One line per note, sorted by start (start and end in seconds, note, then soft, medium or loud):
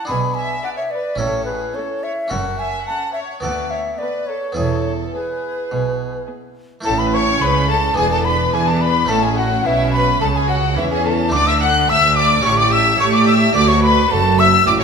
0.05 0.53 B1 medium
0.05 0.53 B2 medium
0.05 1.15 D4 soft
0.05 1.16 G#4 soft
0.05 0.36 B5 medium
0.10 0.53 B2 soft
0.10 0.18 G#5 medium
0.34 0.64 E5 medium
0.34 0.63 G#5 medium
0.63 1.06 D4 medium
0.63 1.06 G#4 medium
0.63 0.78 D5 medium
0.63 0.70 F#5 medium
0.77 0.83 C#5 medium
0.77 0.92 E5 medium
0.91 1.19 B4 medium
0.91 1.19 D5 medium
1.15 1.64 A2 medium
1.15 2.26 C#4 soft
1.15 2.27 E4 soft
1.15 2.28 A4 soft
1.15 1.48 A4 medium
1.15 1.45 C#5 medium
1.20 1.64 A1 medium
1.20 1.64 A2 soft
1.45 1.76 G#4 medium
1.45 1.76 B4 medium
1.75 2.18 C#4 medium
1.75 2.04 A4 medium
1.75 2.18 A4 medium
1.75 2.05 C#5 medium
2.03 2.12 C#5 medium
2.03 2.32 E5 medium
2.28 2.76 F#1 medium
2.28 2.76 F#2 medium
2.28 3.39 C#4 soft
2.28 3.39 F#4 soft
2.28 3.40 A4 soft
2.28 2.38 C#5 medium
2.28 2.61 F#5 medium
2.32 2.76 F#2 soft
2.59 2.87 E5 medium
2.59 2.86 G#5 medium
2.87 3.30 C#4 medium
2.87 3.30 A4 medium
2.87 3.15 F#5 medium
2.87 3.12 A5 medium
3.13 3.43 C#5 medium
3.13 3.20 E5 medium
3.40 3.88 D2 medium
3.40 4.51 B3 soft
3.40 4.53 F#4 soft
3.40 4.54 A4 soft
3.40 3.71 D5 medium
3.40 3.72 F#5 medium
3.45 3.88 D2 soft
3.71 3.79 C#5 medium
3.71 4.00 E5 medium
3.98 4.42 B3 medium
3.98 4.42 A4 medium
3.98 4.28 B4 medium
3.98 4.28 D5 medium
4.26 4.56 A4 medium
4.26 4.56 C#5 medium
4.52 6.79 B3 soft
4.52 6.79 E4 soft
4.52 6.80 G#4 soft
4.52 4.93 C#5 medium
4.56 5.03 E1 medium
4.56 5.02 E2 medium
4.56 5.02 E2 soft
4.56 5.13 A4 medium
5.13 5.57 B3 medium
5.13 5.56 G#4 medium
5.13 6.28 G#4 medium
5.13 6.23 B4 medium
5.71 6.17 B1 medium
5.71 6.16 B2 medium
5.71 6.16 B2 soft
6.28 6.71 B3 medium
6.28 6.70 G#4 medium
6.81 7.92 A3 medium
6.81 7.93 E4 medium
6.81 7.94 A4 medium
6.85 7.38 A1 medium
6.85 7.37 A2 medium
6.85 7.38 A2 medium
6.85 7.94 C#4 medium
6.85 6.91 A4 medium
6.85 7.00 A5 medium
6.85 6.98 A5 loud
6.98 7.13 B4 medium
6.98 7.16 B5 medium
6.98 7.05 B5 medium
7.13 7.42 C#5 loud
7.13 7.41 C#6 loud
7.13 7.43 C#6 medium
7.41 7.97 C#2 medium
7.41 7.97 C#3 medium
7.41 7.94 C#3 medium
7.41 7.70 B4 loud
7.41 7.69 B5 loud
7.41 7.70 B5 medium
7.69 7.97 A4 medium
7.69 7.97 A5 loud
7.69 7.97 A5 medium
7.94 9.04 B3 medium
7.94 9.05 D4 medium
7.94 8.54 D4 medium
7.94 9.06 G#4 medium
7.94 8.10 G#5 loud
7.94 8.15 G#5 loud
7.98 8.53 E1 medium
7.98 8.53 E2 medium
7.98 8.50 E2 medium
7.98 8.12 G#4 medium
8.12 8.26 A4 medium
8.12 8.26 A5 loud
8.12 8.27 A5 medium
8.25 8.54 B4 medium
8.25 8.55 B5 medium
8.25 8.53 B5 loud
8.53 9.09 E2 medium
8.53 9.08 E3 medium
8.53 9.06 E3 medium
8.53 9.09 D4 medium
8.53 8.68 G#4 medium
8.53 8.68 G#5 medium
8.53 8.68 G#5 loud
8.67 8.82 A4 medium
8.67 8.83 A5 medium
8.67 8.82 A5 loud
8.81 9.09 B4 medium
8.81 9.10 B5 medium
8.81 9.10 B5 loud
9.05 11.26 A3 medium
9.05 11.27 C#4 medium
9.05 11.28 A4 medium
9.05 9.24 A5 medium
9.09 9.65 A1 medium
9.09 9.61 A2 medium
9.09 9.64 A2 medium
9.09 9.65 C#4 medium
9.09 9.23 A4 medium
9.09 9.24 A5 loud
9.23 9.38 G#4 medium
9.23 9.37 G#5 medium
9.23 9.37 G#5 loud
9.37 9.65 F#4 medium
9.37 9.66 F#5 loud
9.37 9.68 F#5 medium
9.65 10.20 B1 medium
9.65 10.17 B2 medium
9.65 10.21 B2 medium
9.65 10.20 C#4 medium
9.65 9.93 E4 medium
9.65 9.93 E5 loud
9.65 9.92 E5 loud
9.93 10.21 B4 loud
9.93 10.20 B5 loud
9.93 10.21 B5 loud
10.21 10.76 C#2 medium
10.21 10.73 C#3 medium
10.21 10.76 C#3 medium
10.21 10.76 C#4 medium
10.21 10.26 A4 medium
10.21 10.27 A5 medium
10.21 10.35 A5 loud
10.35 10.49 G#4 medium
10.35 10.41 G#5 medium
10.35 10.49 G#5 loud
10.48 10.77 F#4 medium
10.48 10.77 F#5 loud
10.48 10.55 F#5 medium
10.76 11.33 E2 loud
10.76 11.28 E3 medium
10.76 11.33 E3 medium
10.76 11.32 C#4 medium
10.76 10.90 E4 medium
10.76 10.91 E5 loud
10.76 10.84 E5 medium
10.91 11.04 G#4 medium
10.91 11.08 G#5 medium
10.91 11.05 G#5 loud
11.05 11.33 A4 medium
11.05 11.33 A5 loud
11.05 11.34 A5 medium
11.29 12.39 A3 medium
11.29 12.39 D4 medium
11.29 12.42 D4 medium
11.29 12.40 A4 medium
11.29 11.49 D6 loud
11.33 11.88 D2 medium
11.33 11.85 D3 medium
11.33 11.89 D3 medium
11.33 11.47 D5 loud
11.33 11.47 D6 loud
11.47 11.53 E5 loud
11.47 11.61 E6 medium
11.47 11.61 E6 loud
11.61 11.69 F#5 loud
11.61 11.91 F#5 loud
11.61 11.89 F#6 loud
11.88 12.40 D2 medium
11.88 12.45 D2 medium
11.88 12.45 D2 loud
11.88 12.16 E5 loud
11.88 12.18 E6 loud
11.88 12.16 E6 loud
12.16 12.44 D5 loud
12.16 12.44 D6 loud
12.41 12.99 A1 medium
12.41 12.99 A2 medium
12.41 12.96 A2 medium
12.41 13.51 C#4 medium
12.41 12.99 G4 medium
12.41 13.51 A4 medium
12.41 12.58 C#5 loud
12.41 12.57 C#6 loud
12.41 12.59 C#6 loud
12.57 12.72 D5 loud
12.57 12.74 D6 loud
12.57 12.72 D6 loud
12.71 12.99 E5 loud
12.71 12.99 E6 loud
12.99 13.55 A2 medium
12.99 13.54 A3 loud
12.99 13.52 A3 medium
12.99 13.54 G4 loud
12.99 13.13 C#5 loud
12.99 13.06 C#6 loud
12.99 13.14 C#6 loud
13.13 13.27 D5 loud
13.13 13.27 D6 medium
13.13 13.28 D6 loud
13.26 13.55 E5 loud
13.26 13.55 E6 loud
13.26 13.34 E6 loud
13.53 14.10 D2 medium
13.53 14.07 D2 medium
13.53 14.10 D2 loud
13.53 14.84 D4 medium
13.53 14.09 F#4 medium
13.53 14.84 A4 medium
13.53 13.68 D5 loud
13.53 13.61 D6 loud
13.53 13.69 D6 loud
13.68 13.83 C#5 loud
13.68 13.81 C#6 medium
13.68 13.83 C#6 loud
13.82 14.10 B4 loud
13.82 14.13 B5 loud
13.82 14.10 B5 loud
14.10 14.66 F#1 loud
14.10 14.65 F#2 medium
14.10 14.63 F#2 medium
14.10 14.64 F#4 medium
14.10 14.38 A4 loud
14.10 14.38 A5 loud
14.10 14.41 A5 loud
14.38 14.47 E5 loud
14.38 14.66 E6 loud
14.38 14.67 E6 loud
14.66 14.84 A1 loud
14.66 14.84 A2 medium
14.66 14.84 F#4 medium
14.66 14.72 D5 loud
14.66 14.81 D6 loud
14.66 14.73 D6 loud
14.80 14.84 C#5 loud
14.80 14.84 C#6 loud